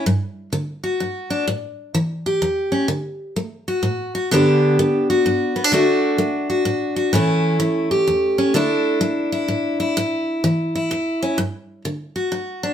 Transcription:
0.06 0.49 G2 medium
0.53 0.96 D3 medium
0.84 1.45 F#4 soft
1.00 1.44 G2 medium
1.30 1.45 D4 medium
1.48 1.91 A2 medium
1.95 2.38 E3 medium
2.26 2.87 G4 medium
2.42 2.85 E2 medium
2.72 2.87 C#4 medium
2.88 3.32 D3 medium
3.36 3.80 A3 medium
3.68 4.14 F#4 medium
3.83 4.27 A2 medium
4.15 4.29 F#4 medium
4.31 4.75 G2 medium
4.31 4.78 D3 medium
4.31 5.55 B3 medium
4.31 5.55 D4 medium
4.31 5.09 G4 medium
4.79 5.22 D3 medium
5.10 5.71 F#4 medium
5.26 5.69 G2 medium
5.56 5.64 B3 medium
5.64 5.72 D4 soft
5.72 6.16 D3 medium
5.72 6.18 A3 medium
5.72 7.12 D4 medium
5.72 6.48 F#4 medium
6.18 6.63 A3 medium
6.50 6.95 F#4 soft
6.65 7.10 A2 medium
6.96 7.11 F#4 medium
7.13 7.57 A2 medium
7.13 7.58 E3 soft
7.13 8.53 A3 medium
7.13 8.37 C#4 medium
7.13 7.91 E4 medium
7.60 8.04 E3 medium
7.91 8.53 G4 medium
8.07 8.51 E2 medium
8.38 8.53 C#4 medium
8.54 8.98 D3 medium
8.54 9.00 A3 medium
8.54 9.95 D4 medium
8.54 9.32 E4 medium
9.01 9.45 A3 medium
9.32 9.79 E4 medium
9.48 9.93 A2 medium
9.80 10.74 E4 medium
9.97 10.40 A2 medium
10.44 10.88 E3 medium
10.75 11.39 E4 medium
10.91 11.35 E2 medium
11.23 11.37 C#4 medium
11.38 11.82 G2 medium
11.85 12.29 D3 medium
12.16 12.74 F#4 medium
12.32 12.74 G2 medium
12.63 12.74 D4 medium

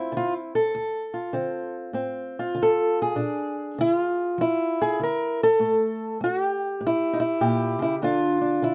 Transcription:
0.00 0.72 C4 soft
0.00 0.55 E4 medium
0.00 0.15 F4 medium
0.12 0.69 D3 medium
0.17 0.33 F4 medium
0.55 1.76 A4 medium
0.75 1.31 D2 medium
1.14 2.35 F4 soft
1.33 1.90 D3 medium
1.33 1.93 C4 soft
1.93 2.51 A2 medium
1.93 3.14 C4 soft
2.39 3.19 F4 medium
2.55 3.12 D3 medium
2.63 2.99 A4 loud
3.02 4.41 G#4 medium
3.16 3.73 A#2 medium
3.16 3.77 D4 soft
3.78 4.35 D3 medium
3.78 3.94 E4 loud
3.94 5.01 F4 loud
4.38 4.95 F3 medium
4.38 5.40 E4 medium
4.82 5.01 G#4 loud
5.00 5.56 D3 medium
5.00 5.41 A#4 loud
5.43 6.23 A4 loud
5.59 6.16 A2 medium
5.59 6.20 A3 soft
6.21 6.77 A3 medium
6.21 6.44 F#4 medium
6.44 7.40 G4 medium
6.81 7.37 A2 medium
6.87 7.19 E4 medium
7.13 7.22 D#4 medium
7.20 7.81 E4 medium
7.41 7.79 A#2 medium
7.41 8.02 G4 loud
7.79 8.01 C#3 medium
7.79 7.95 E4 medium
8.02 8.59 D2 medium
8.02 8.62 D3 soft
8.02 8.41 D4 medium
8.02 8.75 F4 loud
8.41 8.75 D4 soft
8.62 8.75 D3 medium
8.62 8.75 E4 medium

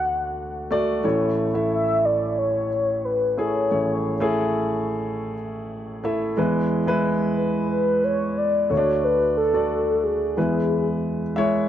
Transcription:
0.00 0.67 D2 medium
0.00 0.67 D3 medium
0.00 0.71 A3 medium
0.00 0.71 F#4 medium
0.00 0.72 D5 medium
0.00 0.67 F#5 loud
0.71 0.99 A3 medium
0.71 0.99 F#4 medium
0.71 0.99 D5 loud
1.04 3.67 A1 medium
1.04 3.67 A2 medium
1.04 1.46 A3 medium
1.04 1.46 E4 medium
1.04 1.47 C#5 medium
1.54 2.66 A3 medium
1.54 2.66 E4 medium
1.54 2.67 E5 medium
1.72 2.07 E5 loud
2.05 2.39 D5 loud
2.38 3.06 C#5 loud
3.05 3.39 B4 medium
3.37 3.65 A3 medium
3.37 3.66 E4 medium
3.37 3.66 G#4 medium
3.37 4.71 C#5 loud
3.70 6.33 A1 medium
3.70 6.33 A2 medium
3.70 4.13 A3 medium
3.70 4.13 E4 medium
3.70 4.13 C#5 medium
4.20 5.33 A3 loud
4.20 5.33 E4 medium
4.20 5.33 G#4 loud
6.04 6.32 A3 medium
6.04 6.32 E4 medium
6.04 6.32 E5 medium
6.37 8.67 E2 medium
6.37 8.67 E3 medium
6.37 6.79 G#3 medium
6.37 6.79 E4 medium
6.37 6.80 B4 medium
6.87 7.99 G#3 medium
6.87 7.99 E4 medium
6.87 8.00 B4 loud
7.37 7.68 B4 medium
7.71 8.05 B4 loud
8.04 8.39 C#5 loud
8.38 8.70 D5 loud
8.70 10.33 D2 medium
8.70 10.33 D3 medium
8.70 9.40 A3 medium
8.70 9.40 F#4 medium
8.70 9.06 C#5 loud
8.70 8.77 C#5 medium
8.77 9.44 D4 medium
9.04 9.37 B4 loud
9.37 10.05 A4 loud
9.53 10.37 A3 medium
9.53 10.37 F#4 medium
9.53 10.37 D5 medium
10.04 11.37 G#4 loud
10.37 11.66 E2 medium
10.37 11.66 E3 medium
10.37 11.21 G#3 medium
10.37 11.21 E4 medium
10.37 11.21 B4 medium
11.36 11.65 G#3 medium
11.36 11.69 E4 medium
11.36 11.65 C#5 loud
11.36 11.67 E5 loud

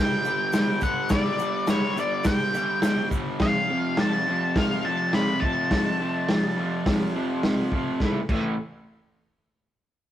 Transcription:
0.00 0.24 G2 loud
0.00 0.24 D3 loud
0.00 0.26 G3 loud
0.00 0.83 G5 medium
0.25 0.52 G2 medium
0.25 0.54 D3 medium
0.25 0.55 G3 loud
0.25 shaker medium
0.53 0.80 G2 medium
0.53 0.82 D3 medium
0.53 0.83 G3 medium
0.53 snare loud
0.53 open hi-hat medium
0.53 shaker loud
0.81 1.10 G2 medium
0.81 1.10 D3 medium
0.81 1.11 G3 medium
0.81 1.12 F#5 medium
0.81 kick medium
0.81 shaker medium
1.09 1.38 G2 medium
1.09 1.39 D3 medium
1.09 1.40 G3 loud
1.09 1.70 D5 medium
1.09 kick loud
1.09 snare loud
1.09 open hi-hat medium
1.09 shaker loud
1.39 1.66 G2 medium
1.39 1.67 D3 medium
1.39 1.67 G3 medium
1.39 shaker medium
1.67 1.95 G2 medium
1.67 1.96 D3 medium
1.67 1.97 G3 medium
1.67 1.99 C#5 medium
1.67 snare loud
1.67 open hi-hat medium
1.67 shaker medium
1.96 2.23 G2 medium
1.96 2.24 D3 medium
1.96 2.25 G3 medium
1.96 2.25 D5 medium
1.96 shaker medium
2.24 2.52 G2 medium
2.24 2.54 D3 loud
2.24 2.54 G3 loud
2.24 3.08 G5 medium
2.24 kick loud
2.24 snare loud
2.24 open hi-hat medium
2.24 shaker loud
2.54 2.81 G2 medium
2.54 2.83 D3 medium
2.54 2.84 G3 medium
2.54 shaker medium
2.82 3.10 G2 medium
2.82 3.11 D3 medium
2.82 3.12 G3 medium
2.82 snare loud
2.82 open hi-hat soft
2.82 shaker loud
3.11 3.39 G2 medium
3.11 3.39 D3 medium
3.11 3.39 G3 medium
3.11 kick medium
3.11 shaker medium
3.40 3.69 F2 medium
3.40 3.69 C3 loud
3.40 3.71 F3 loud
3.40 4.00 F5 medium
3.40 kick loud
3.40 snare loud
3.40 open hi-hat medium
3.70 3.98 F2 medium
3.70 3.98 C3 medium
3.70 4.00 F3 medium
3.97 4.27 F2 medium
3.97 4.28 C3 medium
3.97 4.29 F3 medium
3.97 4.58 A5 medium
3.97 snare loud
3.97 open hi-hat medium
4.27 4.56 F2 medium
4.27 4.57 C3 medium
4.27 4.57 F3 medium
4.56 4.84 F2 medium
4.56 4.86 C3 medium
4.56 4.87 F3 loud
4.56 4.86 F5 medium
4.56 kick loud
4.56 snare loud
4.56 open hi-hat medium
4.85 5.13 F2 medium
4.85 5.14 C3 medium
4.85 5.14 F3 medium
4.85 5.14 A5 loud
5.13 5.42 F2 medium
5.13 5.42 C3 medium
5.13 5.43 F3 medium
5.13 5.43 B5 loud
5.13 snare medium
5.13 open hi-hat medium
5.40 5.71 F2 medium
5.40 5.72 C3 medium
5.40 5.72 F3 medium
5.40 7.38 A5 medium
5.40 kick medium
5.71 5.99 F2 medium
5.71 6.01 C3 medium
5.71 6.01 F3 loud
5.71 kick loud
5.71 snare loud
5.71 open hi-hat medium
6.01 6.28 F2 medium
6.01 6.29 C3 medium
6.01 6.29 F3 medium
6.29 6.56 F2 medium
6.29 6.58 C3 medium
6.29 6.58 F3 medium
6.29 snare loud
6.29 open hi-hat medium
6.57 6.85 F2 medium
6.57 6.86 C3 medium
6.57 6.87 F3 medium
6.86 7.13 F2 loud
6.86 7.14 C3 medium
6.86 7.15 F3 medium
6.86 kick loud
6.86 snare loud
6.86 open hi-hat medium
7.14 7.42 F2 medium
7.14 7.43 C3 medium
7.14 7.44 F3 medium
7.43 7.72 F2 medium
7.43 7.73 C3 medium
7.43 7.73 F3 medium
7.43 snare loud
7.43 open hi-hat soft
7.72 7.99 F2 medium
7.72 8.00 C3 medium
7.72 8.00 F3 medium
7.72 kick medium
8.00 8.18 A2 medium
8.00 8.19 E3 medium
8.00 8.19 A3 medium
8.00 kick medium
8.00 snare medium
8.29 8.53 A2 medium
8.29 8.53 E3 medium
8.29 8.54 A3 medium
8.29 kick loud
8.29 crash medium

